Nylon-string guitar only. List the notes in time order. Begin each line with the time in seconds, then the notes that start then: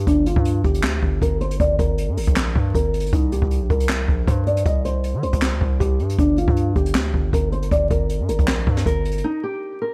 0.07 D4
0.26 F4
0.64 G4
1.22 A#4
1.41 C5
1.60 D5
1.79 A#4
2.17 A#4
2.75 A#4
3.13 D#4
3.32 G4
3.70 A#4
4.27 C5
4.47 D5
4.66 D#5
4.85 C5
5.23 C5
5.80 G4
6.18 D4
6.38 F4
6.76 G4
7.33 A#4
7.52 C5
7.71 D5
7.91 A#4
8.29 A#4
8.86 A#4
9.24 D#4
9.44 G4
9.82 A#4